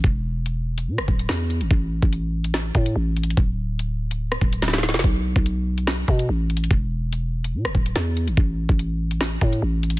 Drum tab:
HH |x-----------------------x-----------------x-----------------------x-----x-----------x-----x-----|x-----------------------x-----------------x-----------------------x-----------------x---x---x---|x-----------------------x-----------------x-----------------------x-----x-----------x-----x-----|x-----------------------x-----------------x-----------------------x-----------------x---x---x---|
SD |------------------------------------------------------r-----------------o-----------------------|------------------------------------------------o-----------------------------------------------|------------------------------------------------------r-----------------o--o--o--o--o--o--o--o--|------------------------------------------------o-----------------------------------------------|
BD |o-----------------------------------------------------------o-----------------------------------|o-----------------o-----------------------------------------o-----------------------------------|o-----------------------------------------------------------o-----------------------------------|o-----------------o-----------------------------------------o-----------------------------------|

HH |x-----------------------x-----------------x-----------------------x-----x-----------x-----x-----|x-----------------------x-----------------x-----------------------x-----------------x---x-------|
SD |------------------------------------------------------r-----------------o-----------------------|------------------------------------------------o-----------------------------------------------|
BD |o-----------------------------------------------------------o-----------------------------------|o-----------------o-----------------------------------------o-----------------------------------|